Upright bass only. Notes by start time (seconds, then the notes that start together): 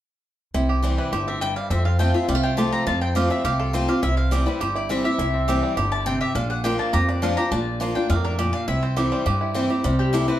0.54 C2
1.12 G1
1.70 F2
2.28 C2
2.87 F2
3.44 C2
4.03 C2
4.61 G1
5.19 C2
5.77 G1
6.35 A#1
6.93 F2
7.51 A#1
8.09 F2
8.68 C2
9.26 G2
9.84 C2